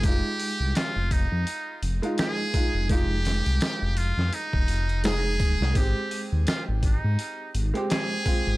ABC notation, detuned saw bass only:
X:1
M:4/4
L:1/16
Q:"Swing 16ths" 1/4=84
K:Fm
V:1 name="Detuned saw bass" clef=bass
F,,, z2 C,, z F,,,2 F,, z2 F,,, z4 F,,,- | F,,,3 C,, z F,,,2 F,, z E,,, F,,,4 E,,, C,, | A,,, z2 E,, z A,,,2 A,, z2 A,,, z4 A,,, |]